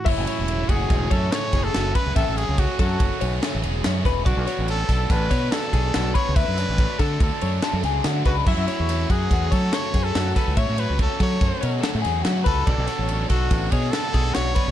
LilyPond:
<<
  \new Staff \with { instrumentName = "Clean electric guitar" } { \time 5/4 \key fis \minor \tempo 4 = 143 e''8 cis''4 fis'4 cis''8 a'8 gis'8 fis'8 b'8 | e''8 cis''4 a'4 cis''8 a'8 gis'8 fis'8 b'8 | d''8 cis''4 a'4 cis''8 a'8 gis'8 fis'8 b'8 | e''8 cis''4 a'4 cis''8 a'8 gis'8 fis'8 b'8 |
e''8 cis''4 fis'4 cis''8 a'8 gis'8 fis'8 b'8 | e''8 cis''4 a'4 cis''8 a'8 gis'8 fis'8 b'8 | d''8 cis''4 a'4 cis''8 a'8 gis'8 fis'8 b'8 | }
  \new Staff \with { instrumentName = "Trumpet" } { \time 5/4 \key fis \minor e'4. gis'4 a'8 cis''8. a'8. b'8 | a'8 gis'8 fis'8 fis'4. r2 | fis'4 a'4 b'4 a'4. cis''8 | b'4. a'8 a'4 r4. fis'8 |
e'4. gis'4 a'8 cis''8. a'8. a'8 | cis''8 b'8 a'8 cis''4. r4. a'8~ | a'4. fis'4 gis'8 a'4 cis''4 | }
  \new Staff \with { instrumentName = "Overdriven electric guitar" } { \time 5/4 \key fis \minor <fis, cis fis a cis'>8 <fis a cis'>8 <cis fis a cis'>8 <fis, cis fis a cis'>8 <cis fis a cis'>8 <fis a cis'>8 <fis, cis fis a cis'>8 <fis a cis'>8 <fis, cis fis a cis'>8 <fis a cis'>8 | <fis, cis fis a cis'>8 <fis a cis'>8 <cis fis a cis'>8 <fis, cis fis a cis'>8 <cis fis a cis'>8 <fis a cis'>8 <fis, cis fis a cis'>8 <fis a cis'>8 <fis, cis fis a cis'>8 <fis a cis'>8 | <b, fis b d'>8 <fis b d'>8 <b, fis b d'>8 <b, fis b d'>8 <b, fis b d'>8 <fis b d'>8 <b, fis b d'>8 <fis b d'>8 <b, fis b d'>8 <fis b d'>8 | <d fis a d'>8 <fis a d'>8 <d fis a d'>8 <d fis a d'>8 <d fis a d'>8 <fis a d'>8 <d fis a d'>8 <fis a d'>8 <d fis a d'>8 <fis a d'>8 |
<fis a cis' fis'>8 <a cis' fis'>8 <fis a cis' fis'>8 <fis a cis' fis'>8 <fis a cis' fis'>8 <a cis' fis'>8 <fis a cis' fis'>8 <a cis' fis'>8 <fis a cis' fis'>8 <a cis' fis'>8 | <fis a cis' fis'>8 <a cis' fis'>8 <fis a cis' fis'>8 <fis a cis' fis'>8 <fis a cis' fis'>8 <a cis' fis'>8 <fis a cis' fis'>8 <a cis' fis'>8 <fis a cis' fis'>8 <a cis' fis'>8 | <b, fis b d' fis'>8 <b d' fis'>8 <fis b d' fis'>8 <b, fis b d' fis'>8 <fis b d' fis'>8 <b d' fis'>8 <b, fis b d' fis'>8 <b d' fis'>8 <b, fis b d' fis'>8 <b d' fis'>8 | }
  \new Staff \with { instrumentName = "Clean electric guitar" } { \clef bass \time 5/4 \key fis \minor <a, e>1 r4 | r1 r4 | r1 r4 | r1 r4 |
r1 r4 | r1 r4 | r1 r4 | }
  \new Staff \with { instrumentName = "Fingered electric bass" } { \clef bass \time 5/4 \key fis \minor fis,,16 fis,,16 r16 e,,8. fis,,8 e,,8 fis,8 r8 fis,,8 fis,,8 r16 cis,16 | a,,16 a,,8 cis,8 r16 fis,8 fis,,16 r16 b,,8 r16 a,,16 e,,8 fis,8 e,,8 | b,,16 b,,16 r16 a,,8. b,,8 a,,8 b,8 r8 b,,8 b,,8 r16 cis,16 | d,16 fis,8 a,,8 r16 d8 d,16 r16 fis,8 r16 fis,16 cis,8 d8 cis,8 |
fis,16 fis,16 r16 e,8. fis,8 e,8 fis8 r8 fis,8 fis,8 r16 cis,16 | a,16 a,8 cis,8 r16 fis8 fis,16 r16 b,8 r16 a,16 e,8 fis8 cis,8 | b,,16 b,,16 r16 a,,8. b,,8 a,,8 b,8 r8 b,,8 b,,8 r16 b,,16 | }
  \new DrumStaff \with { instrumentName = "Drums" } \drummode { \time 5/4 <cymc bd>8 cymr8 cymr8 <bd cymr>8 <bd cymr sn>8 <bd cymr>8 <cymr sn>8 <bd cymr sn>8 <cymr sn>8 <bd cymr>8 | <bd cymr>8 cymr8 <bd cymr>8 <bd cymr>8 <bd cymr>8 cymr8 <cymr sn>8 cymr8 <cymr sn>8 <bd cymr sn>8 | <bd cymr>8 <cymr sn>8 cymr8 <bd cymr sn>8 <bd cymr sn>8 <bd cymr sn>8 <cymr sn>8 <bd cymr>8 <cymr sn>8 <bd cymr>8 | <bd cymr>8 <cymr sn>8 <bd cymr>8 <bd cymr sn>8 <bd cymr>8 cymr8 <cymr sn>8 <cymr sn>8 <cymr sn>8 <bd cymr>8 |
<cymc bd>8 <cymr sn>8 <cymr sn>8 <bd cymr>8 <bd cymr sn>8 <bd cymr>8 <cymr sn>8 <bd cymr>8 <cymr sn>8 <bd cymr sn>8 | <bd cymr>8 cymr8 <bd cymr>8 <bd cymr>8 <bd cymr>8 cymr8 <cymr sn>8 <cymr sn>8 <cymr sn>8 <bd cymr>8 | <bd cymr>8 <cymr sn>8 cymr8 <bd cymr sn>8 <bd cymr sn>8 <bd cymr>8 <cymr sn>8 <bd cymr>8 <cymr sn>8 <bd cymr>8 | }
>>